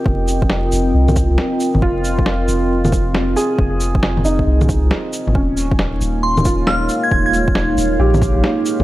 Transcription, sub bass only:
X:1
M:4/4
L:1/16
Q:"Swing 16ths" 1/4=136
K:Fm
V:1 name="Sub bass" clef=bass
F,,,6 F,,,2 C,,3 C,, z3 A,,, | F,,,6 F,,,8 z2 | F,,,6 F,,,2 C,,3 C,, z3 A,,, | E,,,6 E,,,8 z2 |
E,,,6 E,,,2 B,,,3 B,,, z3 A,,, |]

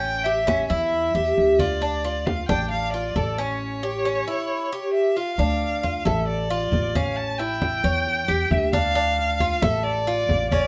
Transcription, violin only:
X:1
M:4/4
L:1/8
Q:1/4=134
K:Dm
V:1 name="Violin"
g e2 e4 d- | d2 f g f d2 ^c- | ^c6 e f- | f3 e d3 f |
a g4- g e f- | f3 e d3 d |]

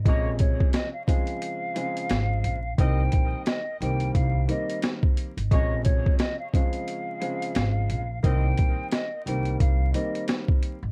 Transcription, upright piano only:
X:1
M:4/4
L:1/8
Q:"Swing 16ths" 1/4=88
K:Bbdor
V:1 name="Upright piano" clef=bass
[C,D,F,A,]2 z [D,F,A,C]2 [D,F,A,C]2 z | [E,G,B,C]2 z [E,G,B,C]2 [E,G,B,C]2 z | [C,D,F,A,]2 z [D,F,A,C]2 [D,F,A,C]2 z | [E,G,B,C]2 z [E,G,B,C]2 [E,G,B,C]2 z |]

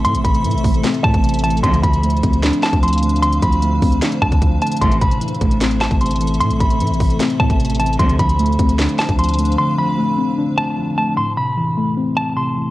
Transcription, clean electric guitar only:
X:1
M:4/4
L:1/8
Q:1/4=151
K:Am
V:1 name="Clean electric guitar"
c' b3 z a2 a | c' b3 z a c'2 | c' b3 z a2 a | c' b3 z a c'2 |
c' b3 z a2 a | c' b3 z a c'2 | c' b3 z a2 a | c' b3 z a c'2 |]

